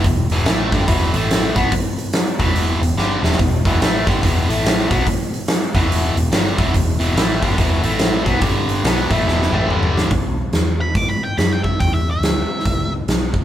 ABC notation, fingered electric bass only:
X:1
M:4/4
L:1/8
Q:"Swing" 1/4=143
K:A
V:1 name="Fingered electric bass" clef=bass
E,,, E,,, A,,, =G,,, E,,, A,,,2 B,,, | z3 E,,,2 E,,, =G,,, E,,, | E,,, E,,, A,,, =G,,, E,,, A,,,2 B,,, | z3 E,,,2 E,,, =G,,, E,,, |
E,,, E,,, A,,, =G,,, E,,, A,,,2 B,,, | =G,,,2 B,,, A,,, E,,, A,,, G,,,2 | B,,,2 E,,2 G,,2 F,,2 | E,,2 D,, z C,,2 B,,,2 |]